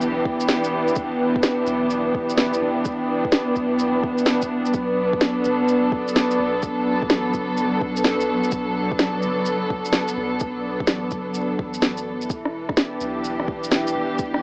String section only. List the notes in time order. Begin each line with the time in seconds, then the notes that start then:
Already playing: E3 B3 D4 G4
4.74 F#3
4.93 A4
12.30 E3
12.65 B3
12.72 D4
12.89 G4